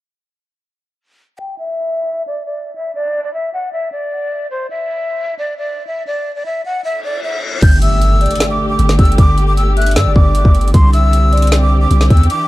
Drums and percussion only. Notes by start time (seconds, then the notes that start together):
7.62 kick, closed hi-hat, crash
7.82 closed hi-hat
8.02 closed hi-hat
8.21 closed hi-hat
8.26 closed hi-hat
8.31 closed hi-hat
8.35 closed hi-hat
8.40 snare, closed hi-hat
8.79 closed hi-hat
8.89 snare
8.99 kick, closed hi-hat
9.05 closed hi-hat
9.12 closed hi-hat
9.18 kick, closed hi-hat
9.38 closed hi-hat
9.57 closed hi-hat
9.77 closed hi-hat
9.82 closed hi-hat
9.86 closed hi-hat
9.91 closed hi-hat
9.96 snare, closed hi-hat
10.16 kick
10.35 closed hi-hat
10.45 kick
10.55 closed hi-hat
10.61 closed hi-hat
10.68 closed hi-hat
10.74 kick, closed hi-hat
10.93 closed hi-hat
11.13 closed hi-hat
11.33 closed hi-hat
11.37 closed hi-hat
11.42 closed hi-hat
11.47 closed hi-hat
11.52 snare, closed hi-hat
11.91 closed hi-hat
12.01 snare
12.10 kick, closed hi-hat
12.17 closed hi-hat
12.23 closed hi-hat
12.30 closed hi-hat